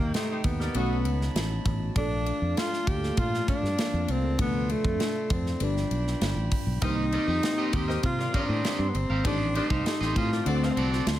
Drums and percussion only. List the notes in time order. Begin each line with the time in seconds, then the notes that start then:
0.14 snare, ride
0.44 kick, ride
0.60 snare
0.75 ride
1.05 ride
1.21 snare
1.36 snare, ride
1.65 kick, ride
1.96 kick, ride
2.26 ride
2.57 snare, ride
2.73 snare
2.87 kick, ride
3.03 snare
3.17 kick, ride
3.34 snare
3.48 kick, ride
3.65 snare
3.79 snare, ride
4.08 ride
4.39 kick, ride
4.70 ride
4.85 kick
5.00 snare, ride
5.30 kick, ride
5.46 snare
5.60 ride
5.77 snare
5.91 ride
6.07 snare
6.21 snare, ride
6.51 kick, open hi-hat, ride
6.82 kick, ride
7.12 ride
7.43 snare, ride
7.73 kick, ride
7.89 snare
8.03 kick, ride
8.19 snare
8.34 kick, ride
8.65 snare, ride
8.95 ride
9.25 kick, ride
9.55 ride
9.70 kick
9.86 snare, ride
10.02 snare
10.16 kick, ride
10.32 snare
10.46 ride
10.63 snare
10.77 ride
10.93 snare
11.07 snare, ride